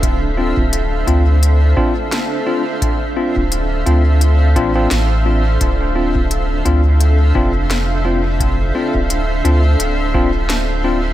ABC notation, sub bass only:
X:1
M:4/4
L:1/16
Q:"Swing 16ths" 1/4=86
K:Dm
V:1 name="Sub bass" clef=bass
D,,,3 D,,,3 D,,4 z6 | z3 D,,,3 D,,4 A,,,2 A,,,4 | D,,,6 D,,4 F,,,6- | F,,,2 z D,,,3 D,,2 D,,,8 |]